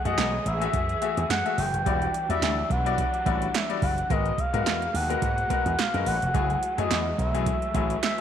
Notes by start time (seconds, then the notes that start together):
Already playing: E3 G#3 A3 G#4
0.05 F#2 A3 F#4 G#4 D#5 F#5, closed hi-hat
0.18 B1, snare, clap, closed hi-hat
0.46 A1 E5, closed hi-hat
0.61 A3 F#4 G#4 E5, closed hi-hat
0.73 F#2, kick, closed hi-hat
0.89 closed hi-hat
1.02 A3 F#4 G#4 E5, closed hi-hat
1.17 E2, closed hi-hat
1.30 F#2 F#5, snare, clap, closed hi-hat
1.45 A3 F#4 G#4 E5, closed hi-hat
1.58 F#1 G5, open hi-hat
1.73 F#1, closed hi-hat
1.86 E1 F#3 G3 D4 E4 F#4 D5, kick, closed hi-hat
2.02 closed hi-hat
2.14 closed hi-hat
2.29 E2 G3 E4 F#4 D5 E5, closed hi-hat
2.42 D2, snare, clap, closed hi-hat
2.70 B1 F#5, kick, closed hi-hat
2.86 G3 E4 F#4 D5, closed hi-hat
2.98 kick, closed hi-hat
3.14 closed hi-hat
3.26 A1 G3 E4 F#4 D5, kick, closed hi-hat
3.42 closed hi-hat
3.54 E5, snare, clap, closed hi-hat
3.69 G3 E4 F#4 D5, closed hi-hat
3.82 F#1 F#5, kick, open hi-hat
3.98 closed hi-hat
4.10 G#1 B2 F#3 G#3 A#3 B3 F#4 A#4 D#5, kick, closed hi-hat
4.26 closed hi-hat
4.38 F5, kick, closed hi-hat
4.53 G#2 G#3 B3 F#4 A#4, closed hi-hat
4.66 E2, snare, clap, closed hi-hat
4.82 closed hi-hat
4.94 D#2 F#5, open hi-hat
5.09 G#3 B3 F#4 A#4, closed hi-hat
5.22 G#2, kick, closed hi-hat
5.38 closed hi-hat
5.50 G#3 B3 F#4 A#4, kick, closed hi-hat
5.66 E2, closed hi-hat
5.79 F5, snare, clap, closed hi-hat
5.94 F#2 G#3 B3 F#4 A#4, closed hi-hat
6.06 A1 F#5, open hi-hat
6.22 F1, closed hi-hat
6.34 F#1 E3 F#3 A3 E4 G#4, kick, closed hi-hat
6.50 closed hi-hat
6.63 closed hi-hat
6.78 F#2 F#3 A3 E4 G#4 D#5, closed hi-hat
6.91 E2, snare, clap, closed hi-hat
7.18 B1 E5, kick, closed hi-hat
7.34 F#3 A3 E4 G#4, closed hi-hat
7.46 kick, closed hi-hat
7.62 closed hi-hat
7.74 A1 F#3 A3 E4 G#4, kick, closed hi-hat
7.90 closed hi-hat
8.03 E5, snare, clap, closed hi-hat